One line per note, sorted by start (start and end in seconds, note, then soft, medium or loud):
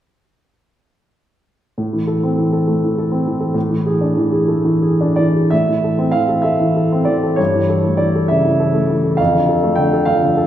1.78 3.51 A2 soft
1.93 2.17 E3 soft
2.07 2.32 A4 soft
2.23 2.47 C4 soft
2.38 2.62 E3 soft
2.53 2.76 A4 soft
2.67 2.91 A3 soft
2.83 3.06 E3 soft
2.98 3.21 A4 soft
3.12 3.35 C4 soft
3.26 3.49 E3 soft
3.40 3.55 A4 soft
3.54 5.47 A2 soft
3.69 3.94 E3 soft
3.86 4.10 G#4 soft
4.01 4.26 D4 soft
4.17 4.42 E3 soft
4.32 4.58 G#4 soft
4.48 4.75 A3 soft
4.65 4.92 E3 soft
4.82 5.10 G#4 soft
5.01 5.29 D4 soft
5.16 5.46 E3 soft
5.16 5.51 D5 medium
5.36 5.52 G#4 soft
5.50 7.36 A2 soft
5.50 6.14 E5 medium
5.69 5.94 E3 soft
5.84 6.09 A4 soft
5.99 6.24 C4 soft
6.11 6.39 E3 soft
6.11 6.44 F5 medium
6.29 6.54 A4 soft
6.42 6.70 A3 soft
6.42 7.06 E5 medium
6.60 6.86 E3 soft
6.76 7.02 A4 soft
6.92 7.17 C4 soft
7.05 7.32 E3 soft
7.05 7.37 D5 medium
7.23 7.39 A4 soft
7.36 9.15 G2 soft
7.36 7.98 C#5 medium
7.54 7.79 E3 soft
7.69 7.94 A4 soft
7.85 8.09 A3 soft
7.97 8.23 E3 soft
7.97 8.28 D5 medium
8.16 8.39 A4 soft
8.28 8.54 C#3 soft
8.28 8.88 E5 medium
8.45 8.68 E3 soft
8.60 8.83 A4 soft
8.74 8.98 A3 soft
8.90 9.13 E3 soft
9.04 9.19 A4 soft
9.17 10.47 F2 soft
9.17 9.77 F5 medium
9.34 9.57 D3 soft
9.49 9.72 A4 soft
9.63 9.87 A3 soft
9.75 10.01 D3 soft
9.75 10.06 G5 medium
9.93 10.16 A4 soft
10.05 10.31 F3 soft
10.05 10.47 F5 medium
10.23 10.46 D3 soft
10.37 10.47 A4 soft